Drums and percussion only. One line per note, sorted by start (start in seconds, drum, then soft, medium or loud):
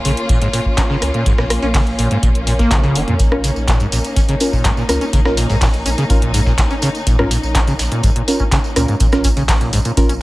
0.05 open hi-hat loud
0.05 tambourine medium
0.17 closed hi-hat soft
0.29 kick loud
0.29 closed hi-hat medium
0.29 tambourine medium
0.42 closed hi-hat soft
0.53 open hi-hat loud
0.53 tambourine medium
0.66 kick medium
0.78 kick loud
0.78 snare loud
0.78 clap loud
0.78 closed hi-hat medium
0.78 tambourine medium
0.90 snare soft
1.02 cross-stick medium
1.02 open hi-hat loud
1.02 tambourine medium
1.14 closed hi-hat soft
1.26 kick loud
1.26 closed hi-hat medium
1.26 tambourine medium
1.38 cross-stick medium
1.38 snare medium
1.50 cross-stick medium
1.50 open hi-hat loud
1.50 tambourine medium
1.62 closed hi-hat soft
1.74 kick loud
1.74 snare loud
1.74 clap loud
1.74 closed hi-hat medium
1.74 open hi-hat medium
1.87 closed hi-hat soft
1.99 open hi-hat loud
1.99 tambourine medium
2.11 closed hi-hat soft
2.23 kick loud
2.23 closed hi-hat medium
2.23 tambourine medium
2.35 closed hi-hat soft
2.47 open hi-hat loud
2.47 tambourine medium
2.59 kick medium
2.59 snare medium
2.59 closed hi-hat soft
2.71 kick loud
2.71 snare loud
2.71 clap loud
2.71 closed hi-hat medium
2.71 tambourine medium
2.84 closed hi-hat soft
2.95 open hi-hat loud
2.95 tambourine medium
3.08 closed hi-hat soft
3.19 kick loud
3.19 closed hi-hat medium
3.19 tambourine soft
3.19 tambourine medium
3.32 cross-stick medium
3.44 open hi-hat loud
3.44 tambourine medium
3.56 tambourine soft
3.68 kick loud
3.68 snare loud
3.68 clap loud
3.68 closed hi-hat medium
3.68 tambourine soft
3.68 tambourine medium
3.80 closed hi-hat soft
3.80 tambourine soft
3.92 open hi-hat loud
3.92 tambourine medium
4.04 closed hi-hat soft
4.04 tambourine soft
4.16 kick loud
4.16 closed hi-hat medium
4.16 tambourine medium
4.16 tambourine soft
4.29 closed hi-hat soft
4.40 open hi-hat loud
4.40 tambourine medium
4.53 kick medium
4.53 tambourine soft
4.65 kick loud
4.65 snare loud
4.65 clap loud
4.65 closed hi-hat medium
4.65 tambourine medium
4.65 tambourine soft
4.77 snare soft
4.77 tambourine soft
4.89 cross-stick medium
4.89 open hi-hat loud
4.89 tambourine medium
5.01 closed hi-hat soft
5.01 tambourine soft
5.13 kick loud
5.13 closed hi-hat medium
5.13 tambourine medium
5.13 tambourine soft
5.25 cross-stick medium
5.25 snare medium
5.37 open hi-hat loud
5.37 tambourine medium
5.50 closed hi-hat soft
5.50 tambourine soft
5.61 kick loud
5.61 snare loud
5.61 clap loud
5.61 closed hi-hat medium
5.61 open hi-hat medium
5.61 tambourine soft
5.73 closed hi-hat soft
5.73 tambourine soft
5.86 open hi-hat medium
5.86 tambourine medium
5.98 closed hi-hat medium
5.98 tambourine soft
6.10 kick loud
6.10 closed hi-hat medium
6.10 tambourine medium
6.10 tambourine soft
6.22 closed hi-hat medium
6.34 open hi-hat loud
6.34 tambourine medium
6.46 kick medium
6.46 snare medium
6.46 tambourine soft
6.58 kick loud
6.58 snare loud
6.58 clap loud
6.58 closed hi-hat medium
6.58 tambourine medium
6.58 tambourine soft
6.70 closed hi-hat soft
6.70 tambourine soft
6.82 open hi-hat loud
6.82 tambourine medium
6.95 closed hi-hat soft
6.95 tambourine soft
7.07 kick loud
7.07 closed hi-hat medium
7.07 tambourine soft
7.07 tambourine medium
7.19 cross-stick medium
7.31 open hi-hat loud
7.31 tambourine medium
7.43 tambourine soft
7.55 kick loud
7.55 snare loud
7.55 clap loud
7.55 closed hi-hat medium
7.55 tambourine soft
7.55 tambourine medium
7.67 closed hi-hat soft
7.67 tambourine soft
7.79 snare loud
7.79 open hi-hat loud
7.79 tambourine medium
7.92 closed hi-hat medium
7.92 tambourine soft
8.03 kick loud
8.03 closed hi-hat medium
8.03 tambourine medium
8.16 closed hi-hat medium
8.28 open hi-hat medium
8.28 tambourine medium
8.39 kick medium
8.39 tambourine soft
8.52 kick loud
8.52 snare loud
8.52 clap loud
8.52 closed hi-hat medium
8.52 tambourine medium
8.64 snare soft
8.64 tambourine soft
8.76 cross-stick medium
8.76 open hi-hat loud
8.76 tambourine medium
8.88 closed hi-hat soft
8.88 tambourine soft
9.00 kick loud
9.00 closed hi-hat medium
9.00 tambourine medium
9.12 cross-stick medium
9.12 snare medium
9.12 closed hi-hat soft
9.12 tambourine soft
9.24 kick medium
9.24 open hi-hat loud
9.24 tambourine medium
9.37 closed hi-hat soft
9.37 tambourine soft
9.49 kick loud
9.49 snare loud
9.49 clap loud
9.49 closed hi-hat medium
9.49 open hi-hat medium
9.49 tambourine medium
9.61 closed hi-hat soft
9.61 tambourine soft
9.73 open hi-hat loud
9.73 tambourine medium
9.85 closed hi-hat medium
9.85 tambourine soft
9.97 kick loud
9.97 closed hi-hat medium
9.97 tambourine medium
10.09 closed hi-hat medium
10.09 tambourine soft